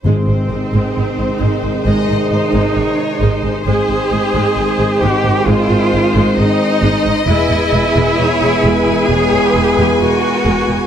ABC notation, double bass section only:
X:1
M:4/4
L:1/16
Q:1/4=66
K:Ab
V:1 name="Double bass section" clef=bass
A,,, A,,, A,,, A,,, A,,, A,,, A,,, A,,, A,,, A,,, A,,, A,,, A,,, z A,,, A,,, | A,,, A,,, A,,, A,,, A,,, A,,, A,,, A,,, A,,, A,,, A,,, A,,, A,,, z A,,, A,,, | =E,,, E,,, E,,, E,,, E,,, E,,, E,,, E,,, E,,, E,,, E,,, E,,, E,,, z E,,, E,,, |]